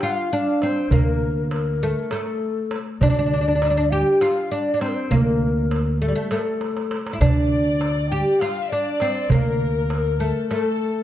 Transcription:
0.01 0.32 F4 medium
0.01 0.63 F5 medium
0.01 darbuka tek medium
0.33 0.63 D4 medium
0.62 0.93 C4 medium
0.62 0.91 C5 medium
0.62 darbuka tek medium
0.91 1.92 D2 medium
0.91 1.83 A#3 medium
0.91 1.47 A#4 medium
0.91 darbuka dum medium
1.22 darbuka ka soft
1.51 2.13 A#4 medium
1.51 darbuka tek medium
1.83 2.11 A3 medium
2.11 2.75 A3 medium
2.11 2.79 A4 medium
2.11 darbuka tek medium
2.71 darbuka tek medium
3.01 4.02 D2 loud
3.01 3.09 D4 medium
3.01 3.92 D5 medium
3.01 darbuka dum medium
3.10 3.16 D4 medium
3.19 3.24 D4 medium
3.26 3.32 D4 medium
3.32 3.39 D4 medium
3.32 darbuka ka soft
3.41 3.47 D4 medium
3.48 3.54 D4 medium
3.55 3.61 D4 soft
3.62 3.69 D4 medium
3.62 darbuka tek medium
3.70 3.76 D4 medium
3.77 3.84 D4 medium
3.91 4.21 G4 medium
3.91 4.23 G5 medium
4.21 4.51 F4 medium
4.21 4.53 F5 medium
4.21 darbuka tek medium
4.51 4.73 D4 medium
4.51 4.81 D5 medium
4.74 4.81 D4 medium
4.80 5.12 C4 medium
4.80 4.90 C5 medium
4.80 darbuka tek medium
4.88 4.96 A#4 medium
4.95 5.12 C5 medium
5.11 6.11 D2 medium
5.11 6.01 A#3 medium
5.11 6.00 A#4 medium
5.11 darbuka dum medium
5.41 darbuka ka soft
5.71 darbuka tek medium
6.01 6.08 A3 medium
6.01 6.29 A4 medium
6.08 6.15 G3 medium
6.15 6.30 A3 medium
6.30 6.94 A3 medium
6.30 6.38 A4 medium
6.30 darbuka tek medium
6.37 6.46 A#4 medium
6.45 6.98 A4 medium
6.61 darbuka tek soft
6.77 darbuka ka medium
6.91 darbuka tek medium
7.07 darbuka ka medium
7.13 7.20 E4 medium
7.21 8.21 D2 loud
7.21 8.11 D4 medium
7.21 8.06 D5 medium
7.21 8.37 D5 medium
7.21 darbuka dum medium
7.51 darbuka ka soft
7.81 darbuka tek medium
8.09 8.41 G4 medium
8.09 8.41 G5 medium
8.40 8.72 F4 medium
8.40 8.71 F5 medium
8.40 8.64 F5 medium
8.40 darbuka tek medium
8.64 8.70 E5 medium
8.70 8.99 D4 medium
8.70 9.32 D5 medium
8.70 9.30 D5 medium
9.00 9.32 C4 medium
9.00 darbuka tek medium
9.30 10.30 D2 medium
9.30 10.20 A#3 medium
9.30 10.20 A#4 medium
9.30 10.51 A#4 medium
9.30 darbuka dum medium
9.60 darbuka ka soft
9.90 darbuka tek medium
10.20 10.50 A3 medium
10.20 10.50 A4 medium
10.50 11.03 A3 medium
10.50 11.03 A4 medium
10.50 darbuka tek medium

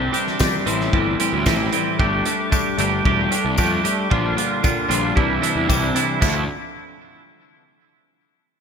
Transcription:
0.00 0.11 C3 medium
0.00 0.12 G3 medium
0.00 0.12 C4 medium
0.00 0.12 D4 loud
0.00 0.12 G4 medium
0.12 0.38 C3 medium
0.12 0.39 G3 medium
0.12 0.39 C4 medium
0.12 0.39 D4 medium
0.12 0.40 G4 medium
0.12 closed hi-hat medium
0.27 snare soft
0.39 0.65 C3 medium
0.39 0.65 G3 medium
0.39 0.65 C4 medium
0.39 0.65 D4 medium
0.39 0.66 G4 medium
0.39 kick loud
0.39 snare loud
0.39 tambourine medium
0.66 0.88 A1 medium
0.66 0.92 A2 medium
0.66 0.92 E3 loud
0.66 0.93 G3 loud
0.66 0.92 C4 loud
0.66 0.94 E4 loud
0.66 0.93 G4 medium
0.66 closed hi-hat medium
0.81 snare soft
0.93 1.14 G1 loud
0.93 1.18 A2 medium
0.93 1.18 E3 medium
0.93 1.19 G3 medium
0.93 1.19 C4 medium
0.93 1.19 E4 medium
0.93 1.20 G4 medium
0.93 kick loud
1.19 1.44 A2 medium
1.19 1.45 E3 medium
1.19 1.45 G3 medium
1.19 1.45 C4 medium
1.19 1.46 E4 medium
1.19 1.46 G4 medium
1.19 closed hi-hat loud
1.33 1.43 D2 medium
1.45 1.67 A1 medium
1.45 1.71 A2 medium
1.45 1.71 E3 medium
1.45 1.72 G3 medium
1.45 1.71 C4 loud
1.45 1.73 E4 loud
1.45 1.72 G4 loud
1.45 kick loud
1.45 snare loud
1.45 tambourine medium
1.72 1.97 A2 medium
1.72 1.97 E3 medium
1.72 1.98 G3 medium
1.72 1.98 C4 medium
1.72 1.99 E4 loud
1.72 1.99 G4 loud
1.72 closed hi-hat medium
1.99 2.20 G1 loud
1.99 2.24 G3 medium
1.99 2.24 A3 medium
1.99 2.25 D4 loud
1.99 2.25 G4 loud
1.99 kick loud
2.25 2.51 G3 medium
2.25 2.50 A3 medium
2.25 2.52 D4 medium
2.25 2.52 G4 medium
2.25 closed hi-hat medium
2.51 2.78 G3 medium
2.51 2.78 A3 medium
2.51 2.79 D4 medium
2.51 2.80 G4 medium
2.51 kick loud
2.51 tambourine medium
2.78 2.99 G1 medium
2.78 3.04 G3 medium
2.78 3.04 A3 loud
2.78 3.05 D4 loud
2.78 3.05 G4 loud
2.78 closed hi-hat medium
3.05 3.26 E1 loud
3.05 3.30 G3 medium
3.05 3.30 A3 medium
3.05 3.31 D4 medium
3.05 3.31 G4 loud
3.05 kick loud
3.31 3.57 G3 medium
3.31 3.57 A3 medium
3.31 3.58 D4 medium
3.31 3.57 G4 medium
3.31 closed hi-hat medium
3.45 3.55 C2 medium
3.58 3.79 F2 medium
3.58 3.82 G3 medium
3.58 3.83 A3 medium
3.58 3.84 D4 loud
3.58 3.83 G4 loud
3.58 kick loud
3.58 tambourine medium
3.84 4.09 G3 medium
3.84 4.09 A3 medium
3.84 4.10 D4 medium
3.84 4.09 G4 medium
3.84 closed hi-hat medium
4.10 4.32 A#1 loud
4.10 4.34 A#2 medium
4.10 4.35 D3 medium
4.10 4.35 G3 loud
4.10 4.35 D4 loud
4.10 4.36 F4 loud
4.10 kick loud
4.35 4.61 A#2 medium
4.35 4.62 D3 medium
4.35 4.62 G3 medium
4.35 4.62 D4 medium
4.35 4.63 F4 medium
4.35 closed hi-hat medium
4.63 4.87 A#2 medium
4.63 4.87 D3 medium
4.63 4.88 G3 medium
4.63 4.88 D4 medium
4.63 4.88 F4 medium
4.63 kick loud
4.63 tambourine medium
4.88 5.11 A#1 medium
4.88 5.14 A#2 loud
4.88 5.14 D3 loud
4.88 5.14 G3 medium
4.88 5.14 D4 loud
4.88 5.15 F4 loud
4.88 closed hi-hat loud
5.15 5.37 C2 loud
5.15 5.40 C3 medium
5.15 5.40 E3 loud
5.15 5.41 G3 loud
5.15 5.41 D4 medium
5.15 5.41 E4 loud
5.15 kick loud
5.41 5.67 C3 medium
5.41 5.67 E3 medium
5.41 5.68 G3 medium
5.41 5.67 D4 medium
5.41 5.68 E4 loud
5.41 closed hi-hat loud
5.56 5.66 E2 medium
5.68 5.90 C2 medium
5.68 5.93 C3 medium
5.68 5.93 E3 loud
5.68 5.94 G3 loud
5.68 5.94 D4 medium
5.68 5.94 E4 loud
5.68 kick loud
5.68 tambourine medium
5.94 6.20 C3 medium
5.94 6.20 E3 medium
5.94 6.20 G3 medium
5.94 6.20 D4 medium
5.94 6.20 E4 medium
5.94 closed hi-hat loud
6.21 6.47 D2 medium
6.21 6.42 D3 medium
6.21 6.42 F3 medium
6.21 6.43 A3 medium
6.21 6.43 D4 medium
6.21 6.43 E4 loud
6.21 kick loud
6.21 crash medium
6.21 tambourine medium

